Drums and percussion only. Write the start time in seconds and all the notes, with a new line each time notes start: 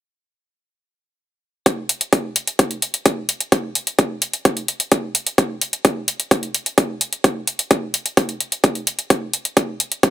1.66 kick, closed hi-hat
1.89 closed hi-hat
2.01 closed hi-hat
2.13 kick, closed hi-hat
2.36 closed hi-hat
2.47 closed hi-hat
2.59 kick, closed hi-hat
2.71 closed hi-hat
2.82 closed hi-hat
2.94 closed hi-hat
3.06 kick, closed hi-hat
3.29 closed hi-hat
3.41 closed hi-hat
3.52 kick, closed hi-hat
3.75 closed hi-hat
3.87 closed hi-hat
3.99 kick, closed hi-hat
4.22 closed hi-hat
4.33 closed hi-hat
4.45 kick, closed hi-hat
4.57 closed hi-hat
4.68 closed hi-hat
4.80 closed hi-hat
4.92 kick, closed hi-hat
5.15 closed hi-hat
5.27 closed hi-hat
5.38 kick, closed hi-hat
5.61 closed hi-hat
5.73 closed hi-hat
5.85 kick, closed hi-hat
6.08 closed hi-hat
6.20 closed hi-hat
6.31 kick, closed hi-hat
6.43 closed hi-hat
6.54 closed hi-hat
6.66 closed hi-hat
6.78 kick, closed hi-hat
7.01 closed hi-hat
7.13 closed hi-hat
7.24 kick, closed hi-hat
7.47 closed hi-hat
7.59 closed hi-hat
7.71 kick, closed hi-hat
7.94 closed hi-hat
8.06 closed hi-hat
8.17 kick, closed hi-hat
8.29 closed hi-hat
8.40 closed hi-hat
8.52 closed hi-hat
8.64 kick, closed hi-hat
8.75 closed hi-hat
8.87 closed hi-hat
8.99 closed hi-hat
9.10 kick, closed hi-hat
9.33 closed hi-hat
9.45 closed hi-hat
9.57 kick, closed hi-hat
9.80 closed hi-hat
9.92 closed hi-hat
10.03 kick, closed hi-hat